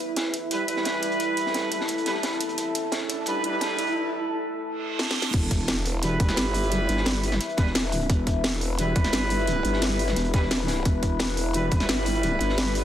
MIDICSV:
0, 0, Header, 1, 8, 480
1, 0, Start_track
1, 0, Key_signature, 1, "minor"
1, 0, Tempo, 344828
1, 1669, Time_signature, 4, 2, 24, 8
1, 17873, End_track
2, 0, Start_track
2, 0, Title_t, "Ambient pad"
2, 0, Program_c, 0, 92
2, 0, Note_on_c, 0, 64, 77
2, 0, Note_on_c, 0, 69, 75
2, 0, Note_on_c, 0, 81, 84
2, 7372, Note_off_c, 0, 69, 0
2, 7373, Note_off_c, 0, 64, 0
2, 7396, Note_off_c, 0, 81, 0
2, 7427, Note_on_c, 0, 71, 75
2, 7428, Note_on_c, 0, 64, 82
2, 7428, Note_on_c, 0, 76, 86
2, 15077, Note_off_c, 0, 76, 0
2, 15110, Note_on_c, 0, 74, 86
2, 17873, Note_off_c, 0, 64, 0
2, 17873, Note_off_c, 0, 71, 0
2, 17873, Note_off_c, 0, 74, 0
2, 17873, End_track
3, 0, Start_track
3, 0, Title_t, "Brass ensemble"
3, 0, Program_c, 1, 61
3, 709, Note_on_c, 1, 55, 88
3, 709, Note_on_c, 1, 64, 82
3, 709, Note_on_c, 1, 71, 97
3, 920, Note_off_c, 1, 55, 0
3, 920, Note_off_c, 1, 64, 0
3, 920, Note_off_c, 1, 71, 0
3, 948, Note_on_c, 1, 64, 93
3, 949, Note_on_c, 1, 55, 96
3, 949, Note_on_c, 1, 71, 113
3, 2360, Note_off_c, 1, 55, 0
3, 2360, Note_off_c, 1, 64, 0
3, 2360, Note_off_c, 1, 71, 0
3, 2388, Note_on_c, 1, 64, 68
3, 2388, Note_on_c, 1, 71, 80
3, 2389, Note_on_c, 1, 55, 73
3, 2517, Note_off_c, 1, 55, 0
3, 2517, Note_off_c, 1, 64, 0
3, 2517, Note_off_c, 1, 71, 0
3, 2868, Note_on_c, 1, 55, 96
3, 2868, Note_on_c, 1, 64, 85
3, 2868, Note_on_c, 1, 71, 105
3, 2997, Note_off_c, 1, 55, 0
3, 2997, Note_off_c, 1, 64, 0
3, 2997, Note_off_c, 1, 71, 0
3, 4549, Note_on_c, 1, 55, 93
3, 4549, Note_on_c, 1, 64, 85
3, 4549, Note_on_c, 1, 71, 101
3, 4760, Note_off_c, 1, 55, 0
3, 4760, Note_off_c, 1, 64, 0
3, 4760, Note_off_c, 1, 71, 0
3, 4788, Note_on_c, 1, 55, 99
3, 4788, Note_on_c, 1, 64, 92
3, 4788, Note_on_c, 1, 71, 107
3, 5509, Note_off_c, 1, 55, 0
3, 5509, Note_off_c, 1, 64, 0
3, 5509, Note_off_c, 1, 71, 0
3, 8388, Note_on_c, 1, 55, 89
3, 8388, Note_on_c, 1, 64, 82
3, 8388, Note_on_c, 1, 71, 104
3, 8600, Note_off_c, 1, 55, 0
3, 8600, Note_off_c, 1, 64, 0
3, 8600, Note_off_c, 1, 71, 0
3, 8628, Note_on_c, 1, 55, 99
3, 8629, Note_on_c, 1, 64, 92
3, 8629, Note_on_c, 1, 71, 111
3, 10040, Note_off_c, 1, 55, 0
3, 10040, Note_off_c, 1, 64, 0
3, 10040, Note_off_c, 1, 71, 0
3, 10068, Note_on_c, 1, 55, 75
3, 10068, Note_on_c, 1, 64, 67
3, 10068, Note_on_c, 1, 71, 81
3, 10197, Note_off_c, 1, 55, 0
3, 10197, Note_off_c, 1, 64, 0
3, 10197, Note_off_c, 1, 71, 0
3, 10549, Note_on_c, 1, 55, 93
3, 10549, Note_on_c, 1, 71, 105
3, 10550, Note_on_c, 1, 64, 87
3, 10677, Note_off_c, 1, 55, 0
3, 10677, Note_off_c, 1, 71, 0
3, 10678, Note_off_c, 1, 64, 0
3, 12228, Note_on_c, 1, 55, 90
3, 12229, Note_on_c, 1, 64, 85
3, 12229, Note_on_c, 1, 71, 100
3, 12440, Note_off_c, 1, 55, 0
3, 12440, Note_off_c, 1, 64, 0
3, 12440, Note_off_c, 1, 71, 0
3, 12468, Note_on_c, 1, 55, 98
3, 12468, Note_on_c, 1, 64, 94
3, 12468, Note_on_c, 1, 71, 111
3, 13880, Note_off_c, 1, 55, 0
3, 13880, Note_off_c, 1, 64, 0
3, 13880, Note_off_c, 1, 71, 0
3, 13909, Note_on_c, 1, 71, 81
3, 13910, Note_on_c, 1, 55, 73
3, 13910, Note_on_c, 1, 64, 68
3, 14037, Note_off_c, 1, 71, 0
3, 14038, Note_off_c, 1, 55, 0
3, 14038, Note_off_c, 1, 64, 0
3, 14388, Note_on_c, 1, 64, 90
3, 14389, Note_on_c, 1, 55, 97
3, 14389, Note_on_c, 1, 71, 105
3, 14517, Note_off_c, 1, 55, 0
3, 14517, Note_off_c, 1, 64, 0
3, 14517, Note_off_c, 1, 71, 0
3, 16069, Note_on_c, 1, 55, 92
3, 16069, Note_on_c, 1, 64, 85
3, 16069, Note_on_c, 1, 71, 100
3, 16280, Note_off_c, 1, 55, 0
3, 16280, Note_off_c, 1, 64, 0
3, 16280, Note_off_c, 1, 71, 0
3, 16309, Note_on_c, 1, 55, 102
3, 16309, Note_on_c, 1, 64, 91
3, 16309, Note_on_c, 1, 71, 111
3, 17720, Note_off_c, 1, 55, 0
3, 17720, Note_off_c, 1, 64, 0
3, 17720, Note_off_c, 1, 71, 0
3, 17749, Note_on_c, 1, 64, 67
3, 17749, Note_on_c, 1, 71, 80
3, 17750, Note_on_c, 1, 55, 75
3, 17873, Note_off_c, 1, 55, 0
3, 17873, Note_off_c, 1, 64, 0
3, 17873, Note_off_c, 1, 71, 0
3, 17873, End_track
4, 0, Start_track
4, 0, Title_t, "Wobble bass"
4, 0, Program_c, 2, 39
4, 7429, Note_on_c, 2, 28, 98
4, 8610, Note_off_c, 2, 28, 0
4, 8630, Note_on_c, 2, 28, 100
4, 8850, Note_off_c, 2, 28, 0
4, 8870, Note_on_c, 2, 31, 95
4, 9570, Note_off_c, 2, 31, 0
4, 9590, Note_on_c, 2, 31, 98
4, 10290, Note_off_c, 2, 31, 0
4, 10549, Note_on_c, 2, 28, 96
4, 11250, Note_off_c, 2, 28, 0
4, 11269, Note_on_c, 2, 28, 96
4, 12450, Note_off_c, 2, 28, 0
4, 12470, Note_on_c, 2, 28, 102
4, 12690, Note_off_c, 2, 28, 0
4, 12709, Note_on_c, 2, 31, 99
4, 13410, Note_off_c, 2, 31, 0
4, 13429, Note_on_c, 2, 31, 100
4, 14130, Note_off_c, 2, 31, 0
4, 14149, Note_on_c, 2, 28, 96
4, 15090, Note_off_c, 2, 28, 0
4, 15109, Note_on_c, 2, 28, 96
4, 16290, Note_off_c, 2, 28, 0
4, 16309, Note_on_c, 2, 28, 96
4, 16530, Note_off_c, 2, 28, 0
4, 16550, Note_on_c, 2, 31, 95
4, 17250, Note_off_c, 2, 31, 0
4, 17270, Note_on_c, 2, 31, 95
4, 17873, Note_off_c, 2, 31, 0
4, 17873, End_track
5, 0, Start_track
5, 0, Title_t, "Impact"
5, 0, Program_c, 3, 103
5, 7429, Note_on_c, 3, 60, 75
5, 9349, Note_off_c, 3, 60, 0
5, 17873, End_track
6, 0, Start_track
6, 0, Title_t, "Reverse cymbal"
6, 0, Program_c, 4, 119
6, 6468, Note_on_c, 4, 60, 75
6, 7429, Note_off_c, 4, 60, 0
6, 17873, End_track
7, 0, Start_track
7, 0, Title_t, "Riser"
7, 0, Program_c, 5, 103
7, 0, Note_on_c, 5, 60, 80
7, 5509, Note_off_c, 5, 60, 0
7, 17873, End_track
8, 0, Start_track
8, 0, Title_t, "Drums"
8, 229, Note_on_c, 9, 42, 78
8, 232, Note_on_c, 9, 38, 109
8, 239, Note_off_c, 9, 42, 0
8, 239, Note_on_c, 9, 42, 84
8, 372, Note_off_c, 9, 38, 0
8, 378, Note_off_c, 9, 42, 0
8, 469, Note_on_c, 9, 42, 64
8, 608, Note_off_c, 9, 42, 0
8, 710, Note_on_c, 9, 42, 75
8, 712, Note_off_c, 9, 42, 0
8, 712, Note_on_c, 9, 42, 89
8, 851, Note_off_c, 9, 42, 0
8, 948, Note_on_c, 9, 42, 62
8, 949, Note_off_c, 9, 42, 0
8, 949, Note_on_c, 9, 42, 89
8, 1063, Note_on_c, 9, 38, 41
8, 1088, Note_off_c, 9, 42, 0
8, 1183, Note_on_c, 9, 42, 90
8, 1189, Note_off_c, 9, 42, 0
8, 1189, Note_on_c, 9, 42, 77
8, 1194, Note_off_c, 9, 38, 0
8, 1194, Note_on_c, 9, 38, 112
8, 1329, Note_off_c, 9, 42, 0
8, 1333, Note_off_c, 9, 38, 0
8, 1427, Note_on_c, 9, 42, 69
8, 1429, Note_off_c, 9, 42, 0
8, 1429, Note_on_c, 9, 42, 86
8, 1554, Note_off_c, 9, 42, 0
8, 1554, Note_on_c, 9, 42, 45
8, 1669, Note_off_c, 9, 42, 0
8, 1669, Note_on_c, 9, 42, 78
8, 1674, Note_off_c, 9, 42, 0
8, 1674, Note_on_c, 9, 42, 99
8, 1814, Note_off_c, 9, 42, 0
8, 1909, Note_on_c, 9, 42, 93
8, 1918, Note_off_c, 9, 42, 0
8, 1918, Note_on_c, 9, 42, 74
8, 2035, Note_on_c, 9, 38, 53
8, 2057, Note_off_c, 9, 42, 0
8, 2149, Note_on_c, 9, 42, 80
8, 2152, Note_off_c, 9, 42, 0
8, 2152, Note_on_c, 9, 42, 84
8, 2153, Note_off_c, 9, 38, 0
8, 2153, Note_on_c, 9, 38, 121
8, 2292, Note_off_c, 9, 38, 0
8, 2292, Note_off_c, 9, 42, 0
8, 2386, Note_on_c, 9, 42, 67
8, 2389, Note_off_c, 9, 42, 0
8, 2389, Note_on_c, 9, 42, 96
8, 2513, Note_on_c, 9, 38, 60
8, 2528, Note_off_c, 9, 42, 0
8, 2614, Note_on_c, 9, 42, 80
8, 2628, Note_off_c, 9, 42, 0
8, 2628, Note_on_c, 9, 42, 77
8, 2652, Note_off_c, 9, 38, 0
8, 2755, Note_off_c, 9, 42, 0
8, 2755, Note_on_c, 9, 42, 40
8, 2867, Note_on_c, 9, 38, 54
8, 2868, Note_off_c, 9, 42, 0
8, 2868, Note_on_c, 9, 42, 90
8, 2875, Note_off_c, 9, 42, 0
8, 2875, Note_on_c, 9, 42, 69
8, 2985, Note_off_c, 9, 38, 0
8, 2985, Note_on_c, 9, 38, 32
8, 3014, Note_off_c, 9, 42, 0
8, 3108, Note_off_c, 9, 38, 0
8, 3108, Note_on_c, 9, 38, 109
8, 3108, Note_on_c, 9, 42, 77
8, 3114, Note_off_c, 9, 42, 0
8, 3114, Note_on_c, 9, 42, 89
8, 3236, Note_off_c, 9, 42, 0
8, 3236, Note_on_c, 9, 42, 42
8, 3247, Note_off_c, 9, 38, 0
8, 3348, Note_off_c, 9, 42, 0
8, 3348, Note_on_c, 9, 42, 93
8, 3351, Note_off_c, 9, 42, 0
8, 3351, Note_on_c, 9, 42, 67
8, 3465, Note_off_c, 9, 42, 0
8, 3465, Note_on_c, 9, 42, 41
8, 3589, Note_off_c, 9, 42, 0
8, 3589, Note_on_c, 9, 42, 83
8, 3592, Note_off_c, 9, 42, 0
8, 3592, Note_on_c, 9, 42, 91
8, 3731, Note_off_c, 9, 42, 0
8, 3829, Note_on_c, 9, 42, 99
8, 3830, Note_off_c, 9, 42, 0
8, 3830, Note_on_c, 9, 42, 67
8, 3969, Note_off_c, 9, 42, 0
8, 4063, Note_on_c, 9, 38, 123
8, 4069, Note_on_c, 9, 42, 85
8, 4202, Note_off_c, 9, 38, 0
8, 4208, Note_off_c, 9, 42, 0
8, 4309, Note_on_c, 9, 42, 100
8, 4311, Note_off_c, 9, 42, 0
8, 4311, Note_on_c, 9, 42, 71
8, 4451, Note_off_c, 9, 42, 0
8, 4536, Note_on_c, 9, 42, 82
8, 4548, Note_off_c, 9, 42, 0
8, 4548, Note_on_c, 9, 42, 83
8, 4688, Note_off_c, 9, 42, 0
8, 4788, Note_on_c, 9, 42, 92
8, 4928, Note_off_c, 9, 42, 0
8, 5026, Note_on_c, 9, 38, 127
8, 5026, Note_on_c, 9, 42, 96
8, 5029, Note_off_c, 9, 42, 0
8, 5029, Note_on_c, 9, 42, 85
8, 5166, Note_off_c, 9, 38, 0
8, 5168, Note_off_c, 9, 42, 0
8, 5269, Note_on_c, 9, 42, 93
8, 5273, Note_off_c, 9, 42, 0
8, 5273, Note_on_c, 9, 42, 70
8, 5385, Note_off_c, 9, 42, 0
8, 5385, Note_on_c, 9, 42, 44
8, 5524, Note_off_c, 9, 42, 0
8, 6949, Note_on_c, 9, 38, 70
8, 7088, Note_off_c, 9, 38, 0
8, 7109, Note_on_c, 9, 38, 86
8, 7248, Note_off_c, 9, 38, 0
8, 7269, Note_on_c, 9, 38, 95
8, 7408, Note_off_c, 9, 38, 0
8, 7420, Note_on_c, 9, 42, 100
8, 7429, Note_off_c, 9, 42, 0
8, 7429, Note_on_c, 9, 36, 123
8, 7429, Note_on_c, 9, 42, 95
8, 7429, Note_on_c, 9, 49, 101
8, 7568, Note_off_c, 9, 36, 0
8, 7568, Note_off_c, 9, 42, 0
8, 7568, Note_off_c, 9, 49, 0
8, 7669, Note_on_c, 9, 36, 62
8, 7669, Note_on_c, 9, 42, 69
8, 7674, Note_off_c, 9, 42, 0
8, 7674, Note_on_c, 9, 42, 77
8, 7808, Note_off_c, 9, 36, 0
8, 7814, Note_off_c, 9, 42, 0
8, 7904, Note_on_c, 9, 42, 94
8, 7909, Note_off_c, 9, 42, 0
8, 7909, Note_on_c, 9, 38, 121
8, 7909, Note_on_c, 9, 42, 98
8, 7914, Note_off_c, 9, 38, 0
8, 7914, Note_on_c, 9, 38, 122
8, 8048, Note_off_c, 9, 42, 0
8, 8054, Note_off_c, 9, 38, 0
8, 8149, Note_on_c, 9, 42, 76
8, 8149, Note_on_c, 9, 46, 83
8, 8288, Note_off_c, 9, 42, 0
8, 8288, Note_off_c, 9, 46, 0
8, 8388, Note_on_c, 9, 42, 99
8, 8396, Note_off_c, 9, 42, 0
8, 8396, Note_on_c, 9, 42, 89
8, 8535, Note_off_c, 9, 42, 0
8, 8629, Note_on_c, 9, 36, 112
8, 8629, Note_on_c, 9, 42, 70
8, 8633, Note_off_c, 9, 42, 0
8, 8633, Note_on_c, 9, 42, 66
8, 8744, Note_on_c, 9, 38, 49
8, 8750, Note_on_c, 9, 40, 53
8, 8768, Note_off_c, 9, 36, 0
8, 8772, Note_off_c, 9, 42, 0
8, 8859, Note_off_c, 9, 38, 0
8, 8859, Note_on_c, 9, 38, 122
8, 8869, Note_off_c, 9, 38, 0
8, 8869, Note_on_c, 9, 38, 118
8, 8869, Note_on_c, 9, 42, 95
8, 8876, Note_off_c, 9, 42, 0
8, 8876, Note_on_c, 9, 42, 91
8, 8889, Note_off_c, 9, 40, 0
8, 9008, Note_off_c, 9, 38, 0
8, 9015, Note_off_c, 9, 42, 0
8, 9109, Note_on_c, 9, 46, 77
8, 9111, Note_on_c, 9, 42, 68
8, 9230, Note_off_c, 9, 42, 0
8, 9230, Note_on_c, 9, 42, 50
8, 9248, Note_off_c, 9, 46, 0
8, 9349, Note_off_c, 9, 42, 0
8, 9349, Note_on_c, 9, 42, 88
8, 9489, Note_off_c, 9, 42, 0
8, 9589, Note_on_c, 9, 42, 69
8, 9593, Note_off_c, 9, 42, 0
8, 9593, Note_on_c, 9, 42, 70
8, 9700, Note_on_c, 9, 38, 54
8, 9732, Note_off_c, 9, 42, 0
8, 9824, Note_on_c, 9, 42, 90
8, 9826, Note_off_c, 9, 38, 0
8, 9826, Note_on_c, 9, 38, 125
8, 9829, Note_off_c, 9, 38, 0
8, 9829, Note_off_c, 9, 42, 0
8, 9829, Note_on_c, 9, 38, 127
8, 9829, Note_on_c, 9, 42, 93
8, 9969, Note_off_c, 9, 38, 0
8, 9969, Note_off_c, 9, 42, 0
8, 10070, Note_on_c, 9, 46, 80
8, 10077, Note_on_c, 9, 42, 78
8, 10189, Note_on_c, 9, 40, 35
8, 10194, Note_on_c, 9, 38, 61
8, 10209, Note_off_c, 9, 46, 0
8, 10216, Note_off_c, 9, 42, 0
8, 10307, Note_on_c, 9, 42, 89
8, 10309, Note_off_c, 9, 42, 0
8, 10309, Note_on_c, 9, 42, 96
8, 10329, Note_off_c, 9, 40, 0
8, 10333, Note_off_c, 9, 38, 0
8, 10431, Note_off_c, 9, 42, 0
8, 10431, Note_on_c, 9, 42, 44
8, 10540, Note_on_c, 9, 38, 48
8, 10544, Note_off_c, 9, 42, 0
8, 10544, Note_on_c, 9, 42, 75
8, 10549, Note_off_c, 9, 42, 0
8, 10549, Note_on_c, 9, 36, 120
8, 10549, Note_on_c, 9, 42, 67
8, 10669, Note_off_c, 9, 38, 0
8, 10669, Note_on_c, 9, 38, 39
8, 10688, Note_off_c, 9, 42, 0
8, 10689, Note_off_c, 9, 36, 0
8, 10789, Note_off_c, 9, 38, 0
8, 10789, Note_on_c, 9, 38, 123
8, 10789, Note_on_c, 9, 42, 97
8, 10792, Note_off_c, 9, 38, 0
8, 10792, Note_off_c, 9, 42, 0
8, 10792, Note_on_c, 9, 38, 124
8, 10792, Note_on_c, 9, 42, 85
8, 10911, Note_off_c, 9, 42, 0
8, 10911, Note_on_c, 9, 42, 45
8, 10931, Note_off_c, 9, 38, 0
8, 11029, Note_on_c, 9, 46, 75
8, 11033, Note_off_c, 9, 42, 0
8, 11033, Note_on_c, 9, 42, 77
8, 11149, Note_off_c, 9, 42, 0
8, 11149, Note_on_c, 9, 42, 44
8, 11168, Note_off_c, 9, 46, 0
8, 11269, Note_on_c, 9, 36, 127
8, 11270, Note_off_c, 9, 42, 0
8, 11270, Note_on_c, 9, 42, 90
8, 11272, Note_off_c, 9, 42, 0
8, 11272, Note_on_c, 9, 42, 92
8, 11408, Note_off_c, 9, 36, 0
8, 11411, Note_off_c, 9, 42, 0
8, 11509, Note_on_c, 9, 36, 66
8, 11509, Note_on_c, 9, 42, 64
8, 11526, Note_off_c, 9, 42, 0
8, 11526, Note_on_c, 9, 42, 75
8, 11649, Note_off_c, 9, 36, 0
8, 11665, Note_off_c, 9, 42, 0
8, 11747, Note_on_c, 9, 38, 117
8, 11750, Note_off_c, 9, 38, 0
8, 11750, Note_on_c, 9, 38, 127
8, 11750, Note_on_c, 9, 42, 93
8, 11758, Note_off_c, 9, 42, 0
8, 11758, Note_on_c, 9, 42, 91
8, 11889, Note_off_c, 9, 38, 0
8, 11897, Note_off_c, 9, 42, 0
8, 11983, Note_on_c, 9, 42, 79
8, 11989, Note_on_c, 9, 46, 77
8, 12122, Note_off_c, 9, 42, 0
8, 12128, Note_off_c, 9, 46, 0
8, 12229, Note_on_c, 9, 42, 92
8, 12230, Note_off_c, 9, 42, 0
8, 12230, Note_on_c, 9, 42, 86
8, 12369, Note_off_c, 9, 42, 0
8, 12464, Note_on_c, 9, 42, 71
8, 12469, Note_off_c, 9, 42, 0
8, 12469, Note_on_c, 9, 42, 63
8, 12470, Note_on_c, 9, 36, 118
8, 12588, Note_on_c, 9, 38, 46
8, 12589, Note_on_c, 9, 40, 51
8, 12608, Note_off_c, 9, 42, 0
8, 12609, Note_off_c, 9, 36, 0
8, 12700, Note_on_c, 9, 42, 87
8, 12706, Note_off_c, 9, 38, 0
8, 12706, Note_on_c, 9, 38, 121
8, 12709, Note_off_c, 9, 38, 0
8, 12709, Note_off_c, 9, 42, 0
8, 12709, Note_on_c, 9, 38, 127
8, 12709, Note_on_c, 9, 42, 93
8, 12729, Note_off_c, 9, 40, 0
8, 12848, Note_off_c, 9, 38, 0
8, 12848, Note_off_c, 9, 42, 0
8, 12949, Note_on_c, 9, 46, 76
8, 12950, Note_on_c, 9, 42, 66
8, 13069, Note_off_c, 9, 42, 0
8, 13069, Note_on_c, 9, 42, 45
8, 13088, Note_off_c, 9, 46, 0
8, 13189, Note_off_c, 9, 42, 0
8, 13189, Note_on_c, 9, 42, 91
8, 13194, Note_off_c, 9, 42, 0
8, 13194, Note_on_c, 9, 42, 97
8, 13333, Note_off_c, 9, 42, 0
8, 13429, Note_on_c, 9, 42, 66
8, 13434, Note_off_c, 9, 42, 0
8, 13434, Note_on_c, 9, 42, 70
8, 13547, Note_on_c, 9, 38, 60
8, 13573, Note_off_c, 9, 42, 0
8, 13667, Note_on_c, 9, 42, 84
8, 13668, Note_off_c, 9, 38, 0
8, 13668, Note_on_c, 9, 38, 109
8, 13669, Note_off_c, 9, 38, 0
8, 13669, Note_off_c, 9, 42, 0
8, 13669, Note_on_c, 9, 38, 127
8, 13669, Note_on_c, 9, 42, 91
8, 13808, Note_off_c, 9, 38, 0
8, 13808, Note_off_c, 9, 42, 0
8, 13909, Note_on_c, 9, 46, 80
8, 13911, Note_on_c, 9, 42, 70
8, 14029, Note_on_c, 9, 38, 61
8, 14029, Note_on_c, 9, 40, 32
8, 14048, Note_off_c, 9, 46, 0
8, 14050, Note_off_c, 9, 42, 0
8, 14149, Note_on_c, 9, 42, 90
8, 14156, Note_off_c, 9, 42, 0
8, 14156, Note_on_c, 9, 42, 91
8, 14168, Note_off_c, 9, 38, 0
8, 14168, Note_off_c, 9, 40, 0
8, 14263, Note_off_c, 9, 42, 0
8, 14263, Note_on_c, 9, 42, 43
8, 14389, Note_off_c, 9, 42, 0
8, 14389, Note_on_c, 9, 36, 113
8, 14389, Note_on_c, 9, 42, 64
8, 14391, Note_off_c, 9, 42, 0
8, 14391, Note_on_c, 9, 42, 67
8, 14398, Note_on_c, 9, 38, 53
8, 14510, Note_off_c, 9, 38, 0
8, 14510, Note_on_c, 9, 38, 34
8, 14529, Note_off_c, 9, 36, 0
8, 14531, Note_off_c, 9, 42, 0
8, 14629, Note_off_c, 9, 38, 0
8, 14629, Note_on_c, 9, 38, 127
8, 14629, Note_on_c, 9, 42, 90
8, 14630, Note_off_c, 9, 38, 0
8, 14630, Note_on_c, 9, 38, 122
8, 14636, Note_off_c, 9, 42, 0
8, 14636, Note_on_c, 9, 42, 97
8, 14746, Note_off_c, 9, 42, 0
8, 14746, Note_on_c, 9, 42, 44
8, 14769, Note_off_c, 9, 38, 0
8, 14857, Note_on_c, 9, 38, 104
8, 14869, Note_on_c, 9, 46, 76
8, 14875, Note_off_c, 9, 42, 0
8, 14875, Note_on_c, 9, 42, 80
8, 14996, Note_off_c, 9, 38, 0
8, 15009, Note_off_c, 9, 46, 0
8, 15014, Note_off_c, 9, 42, 0
8, 15106, Note_on_c, 9, 42, 85
8, 15109, Note_off_c, 9, 42, 0
8, 15109, Note_on_c, 9, 36, 117
8, 15109, Note_on_c, 9, 42, 89
8, 15248, Note_off_c, 9, 42, 0
8, 15249, Note_off_c, 9, 36, 0
8, 15349, Note_on_c, 9, 36, 65
8, 15349, Note_on_c, 9, 42, 65
8, 15350, Note_off_c, 9, 42, 0
8, 15350, Note_on_c, 9, 42, 65
8, 15488, Note_off_c, 9, 36, 0
8, 15489, Note_off_c, 9, 42, 0
8, 15581, Note_on_c, 9, 42, 88
8, 15584, Note_on_c, 9, 38, 121
8, 15590, Note_off_c, 9, 38, 0
8, 15590, Note_off_c, 9, 42, 0
8, 15590, Note_on_c, 9, 38, 122
8, 15590, Note_on_c, 9, 42, 91
8, 15729, Note_off_c, 9, 38, 0
8, 15729, Note_off_c, 9, 42, 0
8, 15827, Note_on_c, 9, 42, 68
8, 15829, Note_on_c, 9, 46, 82
8, 15966, Note_off_c, 9, 42, 0
8, 15968, Note_off_c, 9, 46, 0
8, 16056, Note_on_c, 9, 42, 87
8, 16069, Note_off_c, 9, 42, 0
8, 16069, Note_on_c, 9, 42, 90
8, 16208, Note_off_c, 9, 42, 0
8, 16304, Note_on_c, 9, 42, 66
8, 16309, Note_off_c, 9, 42, 0
8, 16309, Note_on_c, 9, 36, 110
8, 16309, Note_on_c, 9, 42, 63
8, 16429, Note_on_c, 9, 40, 48
8, 16432, Note_on_c, 9, 38, 50
8, 16448, Note_off_c, 9, 36, 0
8, 16448, Note_off_c, 9, 42, 0
8, 16548, Note_off_c, 9, 38, 0
8, 16548, Note_on_c, 9, 38, 115
8, 16549, Note_off_c, 9, 38, 0
8, 16549, Note_on_c, 9, 38, 120
8, 16549, Note_on_c, 9, 42, 89
8, 16550, Note_off_c, 9, 42, 0
8, 16550, Note_on_c, 9, 42, 90
8, 16569, Note_off_c, 9, 40, 0
8, 16689, Note_off_c, 9, 38, 0
8, 16690, Note_off_c, 9, 42, 0
8, 16780, Note_on_c, 9, 42, 72
8, 16789, Note_on_c, 9, 46, 79
8, 16912, Note_off_c, 9, 42, 0
8, 16912, Note_on_c, 9, 42, 48
8, 16928, Note_off_c, 9, 46, 0
8, 17029, Note_off_c, 9, 42, 0
8, 17029, Note_on_c, 9, 42, 91
8, 17034, Note_off_c, 9, 42, 0
8, 17034, Note_on_c, 9, 42, 97
8, 17173, Note_off_c, 9, 42, 0
8, 17270, Note_on_c, 9, 42, 67
8, 17274, Note_off_c, 9, 42, 0
8, 17274, Note_on_c, 9, 42, 72
8, 17387, Note_on_c, 9, 38, 54
8, 17413, Note_off_c, 9, 42, 0
8, 17509, Note_off_c, 9, 38, 0
8, 17509, Note_on_c, 9, 38, 123
8, 17509, Note_on_c, 9, 42, 91
8, 17518, Note_off_c, 9, 38, 0
8, 17518, Note_on_c, 9, 38, 117
8, 17648, Note_off_c, 9, 42, 0
8, 17657, Note_off_c, 9, 38, 0
8, 17747, Note_on_c, 9, 42, 76
8, 17749, Note_on_c, 9, 46, 86
8, 17873, Note_off_c, 9, 42, 0
8, 17873, Note_off_c, 9, 46, 0
8, 17873, End_track
0, 0, End_of_file